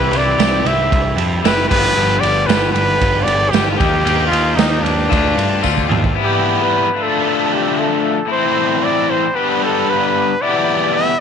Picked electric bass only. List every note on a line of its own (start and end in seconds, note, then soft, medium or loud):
0.11 0.34 C2 medium
0.38 0.61 C2 medium
0.65 0.88 C2 medium
0.92 1.15 C2 loud
1.16 1.40 F2 loud
1.44 1.67 F#1 medium
1.71 1.94 G1 loud
1.96 2.19 G1 loud
2.23 2.46 G1 loud
2.48 2.71 G1 loud
2.73 2.97 G1 medium
3.01 3.24 G1 loud
3.26 3.50 G1 medium
3.53 3.76 G1 medium
3.80 4.03 D#2 loud
4.05 4.29 D#2 medium
4.32 4.55 D#2 loud
4.57 4.81 D#2 medium
4.83 5.07 D#2 medium
5.12 5.35 D2 loud
5.36 5.61 G2 medium
5.65 5.88 D2 medium
5.89 6.13 D#2 medium